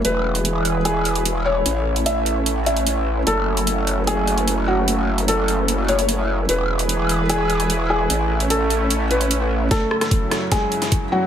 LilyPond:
<<
  \new Staff \with { instrumentName = "Felt piano" } { \time 4/4 \key fis \minor \tempo 4 = 149 b'2 gis'4. cis''8~ | cis''4 e''4. e''4. | a'2 gis'4. fis'8~ | fis'4 a'4. cis''4. |
b'2 gis'4. gis'8~ | gis'4 a'4. b'4. | <a a'>2 <gis gis'>4. <fis fis'>8 | }
  \new Staff \with { instrumentName = "Supersaw synth" } { \time 4/4 \key fis \minor << { <e b'>1 | a1 | <fis a>1~ | <fis a>1 |
<e e' b'>1 | a1 | <fis, cis e'>1 | } \\ { <e' gis'>1 | cis'1~ | cis'1~ | cis'1 |
gis'1 | cis'1 | fis1 | } >> }
  \new Staff \with { instrumentName = "Wobble bass" } { \clef bass \time 4/4 \key fis \minor e,,1 | a,,1 | fis,,1~ | fis,,1 |
e,,1 | a,,1 | r1 | }
  \new DrumStaff \with { instrumentName = "Drums" } \drummode { \time 4/4 hh8. hh16 hh8 hh8 hh8 hh16 hh16 hh4 | hh8. hh16 hh8 hh8 hh8 hh16 hh16 hh4 | hh8. hh16 hh8 hh8 hh8 hh16 hh16 hh4 | hh8. hh16 hh8 hh8 hh8 hh16 hh16 hh4 |
hh8. hh16 hh8 hh8 hh8 hh16 hh16 hh4 | hh8. hh16 hh8 hh8 hh8 hh16 hh16 hh4 | <hh bd sn>8 ss16 <hh ss sn>16 <hh bd>8 <hh ss sn>8 <hh bd sn>8 hh16 <hh sn>16 <hh bd>4 | }
>>